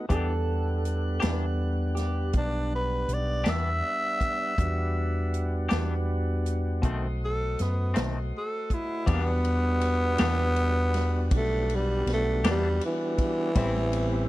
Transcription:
0.09 E2 E3 G3 B3 D4 G4 A4 F#5, kick, closed hi-hat
0.85 closed hi-hat
1.20 E2 E3 B3 D4 G4, snare, closed hi-hat
1.95 G4, snare, closed hi-hat
2.33 B1, kick, closed hi-hat
2.37 D4
2.76 B4
3.08 B1, closed hi-hat
3.14 D5
3.44 E2 E3 B3 D4 G4, snare, closed hi-hat
3.50 E5
4.21 kick, closed hi-hat
4.58 E2 G3 B3 D4 F#4, kick, closed hi-hat
5.34 closed hi-hat
5.69 E2 E3 B3 D4 G4, snare, closed hi-hat
6.46 closed hi-hat
6.82 B1 B2 D#3 A3 C4 F#4 C5 D#5, kick, closed hi-hat
7.25 A4
7.59 F#2 B3, snare, closed hi-hat
7.94 B1 B2 D#3 A3 C4, snare, closed hi-hat
8.38 A4
8.70 E4, kick, closed hi-hat
9.06 E2 E3 G3 B3 D4 F#4 G4, kick, ride
9.14 B3
9.45 ride
9.81 ride
10.18 E2 E3 B3 D4 G4, snare, ride
10.56 ride
10.94 snare, ride
11.31 B1, kick, ride
11.37 A3
11.69 ride
11.75 G3
12.06 B1, snare, ride
12.14 A3
12.43 E2 E3 B3 D4 G4, snare, ride
12.50 G3
12.81 ride
12.86 E3
13.18 kick, ride
13.55 A1 A2 G3 B3 C4 E4, kick, ride
13.93 ride

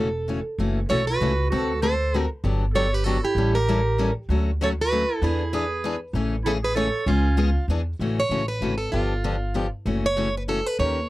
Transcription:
Already playing: E1 A4
0.28 C#3 E3 A3 C#4 F#4
0.59 F#1 C#3 E3 A3 C#4 F#4
0.89 B1 C#3 E3 A3 C#4 F#4 A4 C#5
1.07 F#4 B4
1.21 C#2 C#3 E3 A3 C#4 F#4
1.50 D2 D3 A3 C4 F#4 A4
1.81 D3 A3 C4 F#4 A4 C5
2.14 D3 A3 C4 F#4 A4
2.44 G1 D3 F#3 B3 D4 G4
2.74 D3 F#3 B3 D4 G4 A4 C#5
2.93 G4 B4
3.04 D3 F#3 B3 D4 F#4 G4 A4
3.23 E4 G4
3.35 A1 E3 G3 C#4 E4 A4
3.55 G4 A#4
3.68 E3 G3 C#4 E4 A4
3.98 E3 G3 C#4 E4 A4
4.29 D2 D3 F#3 A3 C#4 F#4
4.61 D3 F#3 A3 C#4 F#4 A4 C#5
4.81 F#4 B4
4.92 D3 F#3 A3 C#4 F#4
5.22 E2 E3 B3 D4 E4 G#4
5.53 E3 B3 D4 G#4 B4
5.84 E3 B3 D4 G#4
6.13 A1 C#3 E3 A3 C#4 G#4
6.45 C#3 E3 A3 C#4 E4 G#4 A4
6.63 G#4 B4
6.75 C#3 E3 A3 C#4 G#4 A4 C#5
7.06 C#2 C#3 G#3 B3 C#4 F4 G#4
7.37 C#3 G#3 B3 F4 G#4
7.68 E2 E3 B3 D4 G#4
7.99 A1 C#3 E3 A3 C#4 F#4
8.20 C#5
8.29 A1 C#3 E3 A3 C#4 F#4
8.48 B4
8.61 G#1 C#3 E3 A3 C#4 F#4
8.78 A4
8.92 G1 D3 F3 B3 D4 F4 G4
9.24 D3 F3 B3 D4 G4
9.54 D3 F3 B3 D4 G4
9.86 F#1 C#3 E3 A3 C#4 F#4
10.06 C#5
10.17 C#3 E3 A3 C#4 F#4
10.37 B4
10.48 C#3 E3 A3 C#4 F#4 A4
10.66 B4
10.78 D#2 D#3 A#3 C#4 G4 A#4 C#5

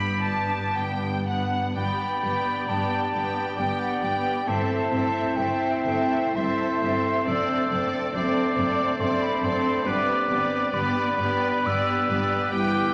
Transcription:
Already playing: G1 G2 B3 D4 G4 B5
0.21 B3 D4 A5
0.75 G1 G2 G5
1.27 B3 D4 F#5
1.75 G1 G2 G3 B3 D4 G4 D5 G5 B5
2.23 G1 G2 B3 G4 G5
2.68 G1 G2 B3 G4 G5 A5
3.13 G1 G2 B3 G4 G5
3.57 G1 G2 G3 B3 G4 D5 G5
3.81 F#5
4.02 G1 G2 B3 G4 G5
4.47 G1 G2 A3 C4 E4 A4 C5 E5 A5
4.91 G1 G2 C4 A4 E5
5.36 G1 G2 A3 C4 A4 C5 E5 G5
5.84 G1 G2 C4 A4 E5
6.34 G1 G2 A3 C4 A4 C5 E5 C6
6.81 G1 G2 C4 A4 E5
7.26 F#1 F#2 A3 C4 D4 A4 C5 D5 E6
7.71 F#1 F#2 C4 A4 D5
8.13 F#1 F#2 A3 C4 A4 C5 D5 D6
8.56 F#1 F#2 C4 A4 D5
8.99 F#1 F#2 A3 C4 A4 C5 D5 C6
9.21 B5
9.42 F#1 F#2 C4 A4 D5 C6
9.85 G1 G2 G3 B3 G4 B4 D5 D6
10.28 G1 G2 B3 G4 D5
10.72 G1 G2 G3 B3 G4 B4 D5 B5
11.17 G1 G2 B3 G4 D5
11.64 G1 G2 B3 G4 D5 E6
12.08 G1 G2 B3 G4 D5
12.51 G1 G2 E3 G3 E4 G4 B4 G5 D6

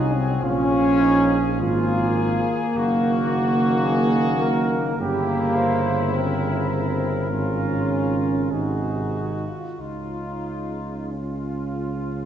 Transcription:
Already playing: C2 F#3 D#4 F#4 G#4
0.15 C4
0.42 A#1 F3 C#4 F4 G#4
1.00 D#4
1.58 G#1 F3 A#3 F4 G#4
2.75 F#1 D#3 F#4
3.85 G#4
4.42 A#4
4.98 G1 C#3 A#3 E4 G4
5.56 C5
6.13 C4 A#4
7.28 G#1 C#3 C#4 F4
8.51 G#1 C3 D#4 F#4 G#4
9.47 F4
9.79 C#2 C#3 D#4 F4
11.10 C#3 C#4 F4

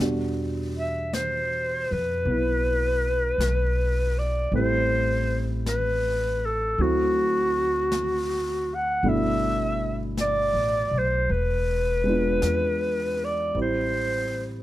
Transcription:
Already playing: A4
0.00 E2 B2 G3 D4 F#4, brush sweep, snare
0.78 E5
1.13 C5, brush sweep, snare, hi-hat pedal
1.91 F2 B4
2.25 B1 B3, brush sweep
2.30 E4
3.38 B1, brush sweep, snare, hi-hat pedal
4.19 D5
4.52 A1 G3 A3 C4 E4 C5, brush sweep
5.66 B4, brush sweep, snare, hi-hat pedal
6.46 A4
6.78 D2 F#3 A3 C4 E4 F#4, brush sweep
7.92 brush sweep, snare, hi-hat pedal
8.75 F#5
9.03 G1 B2 A3 D4 E4, brush sweep
9.09 E5
10.17 D5, brush sweep, snare, hi-hat pedal
10.53 A1
10.91 B1
10.98 C5
11.29 E1 B4, brush sweep
12.04 G#3 B3 D4
12.09 F4
12.42 E2, brush sweep, snare, hi-hat pedal
13.24 D5
13.54 A1 G3 C4 E4, brush sweep
13.62 C5

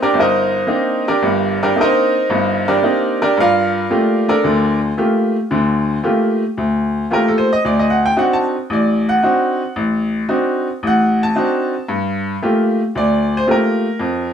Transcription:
0.02 D4 G4 A#4 D5
0.14 G1
0.19 D#4 A#4 C5 D#5
0.67 A#3 C4 D4 D#4
1.08 D4 G4 A#4 D5
1.22 G1 G2
1.63 D4 G4 A#4 D5
1.76 A#3 C4 D4 D#4
1.81 D#4 A#4 C5 D#5
2.30 G1 G2
2.68 D4 G4 A#4 D5
2.83 A#3 C4 D4 D#4
3.22 D4 G4 A#4 D5
3.37 G2 F4 A#4 D5 F5
3.90 A3 A#3 F4 G4
4.28 D4 A4 A#4 D5
4.44 D2 D3
4.97 A3 A#3 F4 G4
5.51 D2 D3
6.03 A3 A#3 F4 G4
6.57 D2
7.11 A3 A#3 F4 G4 A#4
7.28 A4
7.38 C5
7.53 D#5
7.65 D2 D5
7.79 D#5
7.90 F#5
8.06 G5
8.16 C4 D4 D#4 F#4 F#5
8.33 A5
8.70 A1 D5
9.09 F#5
9.22 C4 D4 D#4 F#4
9.76 A1
10.29 C4 D4 D#4 F#4
10.83 A1
10.87 F#5
11.23 A5
11.35 C4 D4 D#4 F#4
11.89 G2
12.42 A3 A#3 F4 G4
12.95 D2 D5
13.37 C5
13.47 A3 A#3 F4 G4
13.51 A#4
14.00 F2

